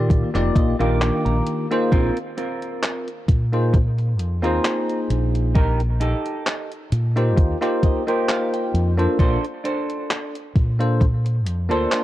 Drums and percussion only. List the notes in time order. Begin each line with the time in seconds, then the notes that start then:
0.10 kick, closed hi-hat
0.35 clap, closed hi-hat
0.56 kick, closed hi-hat
0.81 closed hi-hat
1.02 clap, closed hi-hat
1.26 closed hi-hat
1.47 closed hi-hat
1.71 closed hi-hat
1.92 kick, closed hi-hat
2.17 closed hi-hat
2.38 closed hi-hat
2.62 closed hi-hat
2.83 clap, closed hi-hat
3.08 closed hi-hat
3.28 kick, closed hi-hat
3.53 closed hi-hat
3.74 kick, closed hi-hat
3.98 closed hi-hat
4.19 closed hi-hat
4.44 closed hi-hat
4.65 clap, closed hi-hat
4.90 closed hi-hat
5.11 closed hi-hat
5.35 closed hi-hat
5.55 kick, closed hi-hat
5.80 closed hi-hat
6.01 closed hi-hat
6.26 closed hi-hat
6.47 clap, closed hi-hat
6.72 closed hi-hat
6.92 closed hi-hat
7.17 closed hi-hat
7.37 kick, closed hi-hat
7.62 clap, closed hi-hat
7.83 kick, closed hi-hat
8.08 closed hi-hat
8.29 clap, closed hi-hat
8.54 closed hi-hat
8.75 closed hi-hat
8.99 closed hi-hat
9.19 kick, closed hi-hat
9.44 closed hi-hat
9.65 closed hi-hat
9.90 closed hi-hat
10.11 clap, closed hi-hat
10.35 closed hi-hat
10.55 kick, closed hi-hat
10.80 closed hi-hat
11.01 kick, closed hi-hat
11.26 closed hi-hat
11.46 closed hi-hat
11.71 closed hi-hat
11.92 clap, closed hi-hat